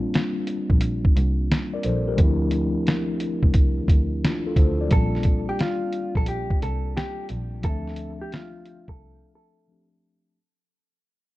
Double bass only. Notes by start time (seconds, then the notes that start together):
0.70 A#1
1.16 C2
1.85 A#1
2.19 D2
3.43 C2
3.78 D2
3.88 D2
4.57 D2
4.91 A#1
6.16 A#1
6.62 C2
7.30 A#1
7.64 D2
8.88 C2